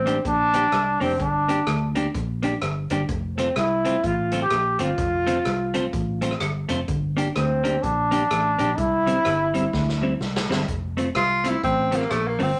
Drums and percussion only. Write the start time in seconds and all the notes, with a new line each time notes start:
0.07 closed hi-hat
0.25 kick, closed hi-hat
0.54 closed hi-hat
0.72 cross-stick, closed hi-hat
1.01 open hi-hat
1.20 kick, closed hi-hat
1.49 closed hi-hat
1.67 cross-stick, closed hi-hat
1.95 closed hi-hat
2.15 kick, closed hi-hat
2.43 closed hi-hat
2.62 cross-stick, closed hi-hat
2.90 closed hi-hat
3.09 kick, closed hi-hat
3.38 closed hi-hat
3.56 cross-stick, closed hi-hat
3.85 closed hi-hat
4.04 kick, closed hi-hat
4.32 closed hi-hat
4.50 cross-stick, closed hi-hat
4.79 closed hi-hat
4.98 kick, closed hi-hat
5.27 closed hi-hat
5.45 cross-stick, closed hi-hat
5.74 closed hi-hat
5.93 kick, closed hi-hat
6.22 closed hi-hat
6.31 cross-stick
6.40 cross-stick, closed hi-hat
6.69 closed hi-hat
6.88 kick, closed hi-hat
7.18 closed hi-hat
7.36 cross-stick, closed hi-hat
7.65 closed hi-hat
7.83 kick, closed hi-hat
8.12 closed hi-hat
8.31 cross-stick, closed hi-hat
8.59 closed hi-hat
8.78 kick, closed hi-hat
9.07 closed hi-hat
9.25 cross-stick, closed hi-hat
9.54 closed hi-hat
9.73 kick, snare
9.89 snare
10.21 snare
10.36 snare
10.52 snare
10.68 kick, closed hi-hat
10.98 closed hi-hat
11.15 cross-stick, closed hi-hat
11.44 closed hi-hat
11.63 kick, closed hi-hat
11.92 closed hi-hat
12.01 cross-stick
12.11 cross-stick, closed hi-hat
12.39 open hi-hat